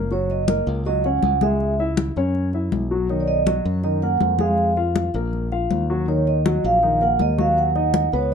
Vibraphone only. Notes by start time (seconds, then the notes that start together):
0.12 C#5
0.31 D#5
0.86 D#5
1.04 F#5
1.42 E5
3.09 C#5
3.20 D5
3.28 D#5
3.84 D#5
4.02 F#5
4.40 F5
6.09 C#5
6.27 D#5
6.65 F5
7.03 F#5
7.22 D#5
7.40 F5
7.58 F#5
8.15 C#5